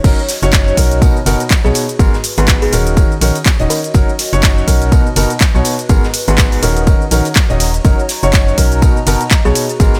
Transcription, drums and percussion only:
0.04 kick, closed hi-hat, crash, ride, tambourine, cabasa
0.19 cabasa
0.29 snare, open hi-hat, ride, tambourine, cabasa
0.43 closed hi-hat, cabasa
0.53 kick, snare, clap, closed hi-hat, ride, tambourine, cabasa
0.68 cabasa
0.77 kick, open hi-hat, ride, tambourine, cabasa
0.91 closed hi-hat, cabasa
1.02 kick, closed hi-hat, ride, tambourine, cabasa
1.17 cabasa
1.26 snare, open hi-hat, ride, tambourine, cabasa
1.40 closed hi-hat, cabasa
1.51 kick, snare, clap, closed hi-hat, ride, tambourine, cabasa
1.65 snare, cabasa
1.74 open hi-hat, ride, tambourine, cabasa
1.89 closed hi-hat, cabasa
1.99 kick, closed hi-hat, ride, tambourine, cabasa
2.13 snare, cabasa
2.24 open hi-hat, ride, tambourine, cabasa
2.37 closed hi-hat, cabasa
2.48 kick, snare, clap, closed hi-hat, ride, tambourine, cabasa
2.62 open hi-hat, cabasa
2.73 open hi-hat, ride, tambourine, cabasa
2.87 closed hi-hat, cabasa
2.97 kick, closed hi-hat, ride, tambourine, cabasa
3.12 cabasa
3.21 open hi-hat, ride, tambourine, cabasa
3.35 closed hi-hat, cabasa
3.46 kick, snare, clap, closed hi-hat, ride, tambourine, cabasa
3.59 closed hi-hat, cabasa
3.70 snare, open hi-hat, ride, tambourine, cabasa
3.84 closed hi-hat, cabasa
3.94 kick, closed hi-hat, ride, tambourine, cabasa
4.09 cabasa
4.19 snare, open hi-hat, ride, tambourine, cabasa
4.33 closed hi-hat, cabasa
4.43 kick, snare, clap, closed hi-hat, ride, tambourine, cabasa
4.58 cabasa
4.68 kick, open hi-hat, ride, tambourine, cabasa
4.82 closed hi-hat, cabasa
4.92 kick, closed hi-hat, ride, tambourine, cabasa
5.07 cabasa
5.16 snare, open hi-hat, ride, tambourine, cabasa
5.30 closed hi-hat, cabasa
5.41 kick, snare, clap, closed hi-hat, ride, tambourine, cabasa
5.55 snare, cabasa
5.64 open hi-hat, ride, tambourine, cabasa
5.79 closed hi-hat, cabasa
5.89 kick, closed hi-hat, ride, tambourine, cabasa
6.04 snare, cabasa
6.14 open hi-hat, ride, tambourine, cabasa
6.28 closed hi-hat, cabasa
6.38 kick, snare, clap, closed hi-hat, ride, tambourine, cabasa
6.52 open hi-hat, cabasa
6.63 open hi-hat, ride, tambourine, cabasa
6.77 closed hi-hat, cabasa
6.87 kick, closed hi-hat, ride, tambourine, cabasa
7.02 cabasa
7.11 open hi-hat, ride, tambourine, cabasa
7.25 closed hi-hat, cabasa
7.35 kick, snare, clap, closed hi-hat, ride, tambourine, cabasa
7.50 closed hi-hat, cabasa
7.60 snare, open hi-hat, ride, tambourine, cabasa
7.74 closed hi-hat, cabasa
7.85 kick, closed hi-hat, ride, tambourine, cabasa
7.99 cabasa
8.09 snare, open hi-hat, ride, tambourine, cabasa
8.23 closed hi-hat, cabasa
8.33 kick, snare, clap, closed hi-hat, ride, tambourine, cabasa
8.48 cabasa
8.58 kick, open hi-hat, ride, tambourine, cabasa
8.72 closed hi-hat, cabasa
8.82 kick, closed hi-hat, ride, tambourine, cabasa
8.97 cabasa
9.07 snare, open hi-hat, ride, tambourine, cabasa
9.21 closed hi-hat, cabasa
9.30 kick, snare, clap, closed hi-hat, ride, tambourine, cabasa
9.46 snare, cabasa
9.55 open hi-hat, ride, tambourine, cabasa
9.69 closed hi-hat, cabasa
9.80 kick, closed hi-hat, ride, tambourine, cabasa
9.94 snare, cabasa

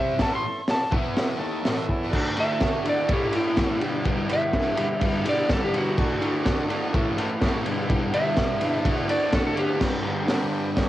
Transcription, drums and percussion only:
0.19 kick, snare, open hi-hat
0.68 snare, open hi-hat
0.92 kick
1.17 snare, open hi-hat
1.65 snare, open hi-hat
1.89 kick
2.13 kick, crash
2.36 ride
2.60 kick, snare, ride
2.85 ride
3.08 kick, ride
3.33 ride
3.57 kick, snare, ride
3.81 ride
4.05 kick, ride
4.29 ride
4.53 kick, snare, ride
4.77 ride
5.01 kick, ride
5.25 ride
5.49 kick, snare, ride
5.74 ride
5.98 kick, crash
6.22 ride
6.45 kick, snare, ride
6.70 ride
6.94 kick, ride
7.18 ride
7.41 kick, snare, ride
7.66 ride
7.90 kick, ride
8.14 ride
8.37 kick, snare, ride
8.61 ride
8.85 kick, ride
9.09 ride
9.33 kick, snare, ride
9.57 ride
9.81 kick, snare, crash
10.28 snare, open hi-hat
10.77 kick, snare, open hi-hat

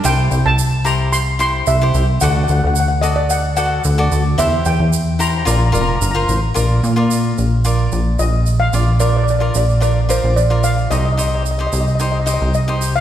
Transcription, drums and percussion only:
0.04 shaker
0.31 shaker
0.58 shaker
0.86 shaker
1.13 shaker
1.40 shaker
1.67 shaker
1.94 shaker
2.20 shaker
2.48 shaker
2.76 shaker
3.03 shaker
3.30 shaker
3.57 shaker
3.84 shaker
4.12 shaker
4.39 shaker
4.65 shaker
4.93 shaker
5.20 shaker
5.47 shaker
5.74 shaker
6.02 shaker
6.29 shaker
6.56 shaker
6.84 shaker
7.11 shaker
7.38 shaker
7.65 shaker
7.92 shaker
8.19 shaker
8.46 shaker
8.73 shaker
9.00 shaker
9.28 shaker
9.54 shaker
9.70 shaker
9.82 shaker
10.10 shaker
10.37 shaker
10.64 shaker
10.78 shaker
10.91 shaker
11.19 shaker
11.46 shaker
11.73 shaker
11.87 shaker
11.99 shaker
12.27 shaker
12.54 shaker
12.81 shaker
12.96 shaker

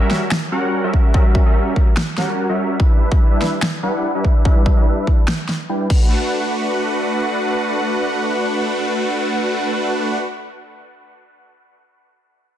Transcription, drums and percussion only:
0.11 snare
0.31 finger snap, snare
0.94 kick
1.14 kick
1.35 kick
1.76 kick
1.97 finger snap, snare
2.18 snare
2.80 kick
3.12 kick
3.42 snare
3.62 finger snap, snare
4.25 kick
4.45 kick
4.66 kick
5.07 kick
5.28 finger snap, snare
5.49 snare
5.90 kick, crash

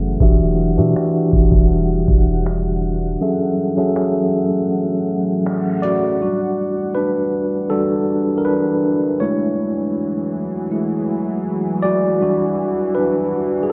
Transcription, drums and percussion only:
0.21 kick, closed hi-hat
0.58 closed hi-hat
0.96 finger snap
1.33 kick, closed hi-hat
1.52 kick
1.71 closed hi-hat
2.08 kick, closed hi-hat
2.45 finger snap, closed hi-hat
2.83 closed hi-hat
3.20 closed hi-hat
3.58 closed hi-hat
3.96 finger snap
4.33 closed hi-hat
4.71 closed hi-hat
5.08 closed hi-hat
5.45 finger snap, closed hi-hat
5.83 closed hi-hat

